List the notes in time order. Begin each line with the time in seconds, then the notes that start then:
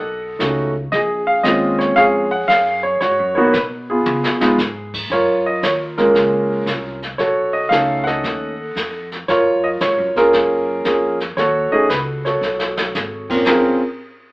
Already playing: B1 A4 D#5 F#5
0.39 C#2 A3 C#4 D#4 F#4, snare, hi-hat pedal
0.92 A#1 G#4 D#5, brush sweep, snare
1.27 F5
1.43 D#2 G#3 C4 C#4 F4 D#5, snare, hi-hat pedal
1.79 C#5, snare
1.96 F2 G#4 C#5 F5, brush sweep, snare
2.31 F#5
2.48 F#2 F5, snare, hi-hat pedal
2.83 C#5
3.01 G#2 F#4 C#5, brush sweep, snare
3.19 F#2
3.35 D#2 A#3 B3 D#4 F#4 C#5
3.53 B2 B4, snare, hi-hat pedal
3.90 B3 F4 G#4
4.06 C#3, mid tom
4.23 B2, snare
4.40 G#2 G#3 B3 D#4 F4, snare
4.58 G#2, snare, hi-hat pedal
4.94 kick, crash
5.10 F#2 F4 A#4 C#5, brush sweep, snare
5.46 D#5
5.63 D#2 C#5, snare, hi-hat pedal
5.98 G#3 A#3 C#4 F4 A#4, snare
6.15 C#2, brush sweep, snare
6.66 C2, snare, hi-hat pedal
7.02 snare
7.18 B1 F#4 A4 C#5, brush sweep, snare
7.53 D#5
7.69 C#2 A3 C#4 D#4 A4 F5, snare, hi-hat pedal
8.04 A4 D#5 F#5, snare
8.23 D#2, brush sweep, snare
8.76 F2, snare, hi-hat pedal
9.12 snare
9.28 F#2 F4 A#4 C#5, brush sweep, snare
9.64 D#5
9.81 G#2 C#5, snare, hi-hat pedal
9.98 F#2
10.15 F2 A#3 C#4 F4 G#4 A#4, snare
10.33 F#2, brush sweep, snare
10.85 F2 A#3 C#4 F4 G#4, snare, hi-hat pedal
11.20 snare
11.37 D#2 F#4 A4 C#5, brush sweep, snare
11.72 A3 C#4 D#4 G#4 D#5, muted upright bass stroke
11.89 C#2 B4, snare, hi-hat pedal
12.25 F#4 A4 C#5, snare
12.41 B1, snare
12.59 snare
12.77 snare
12.95 G#1, snare, hi-hat pedal
13.30 A#2 C4 C#4 F4 A#4, kick, crash
13.46 A#1 C4 C#4 F4 G#4 A#4, snare, floor tom, open hi-hat